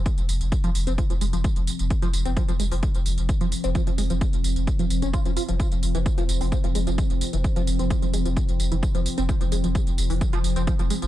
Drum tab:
HH |xxoxxxoxxxoxxxox|xxoxxxooxxoxxxox|xxoxxxoxxxoxxxox|xxoxxxooxxoxxxox|
TB |xxxxxxxxxxxxxxxx|xxxxxxxxxxxxxxxx|xxxxxxxxxxxxxxxx|xxxxxxxxxxxxxxxx|
BD |o---o---o---o---|o---o---o---o---|o---o---o---o---|o---o---o---o---|

HH |xxoxxxoxxxoxxxox|xxoxxxooxxoxxxox|
TB |xxxxxxxxxxxxxxxx|xxxxxxxxxxxxxxxx|
BD |o---o---o---o---|o---o---o---o---|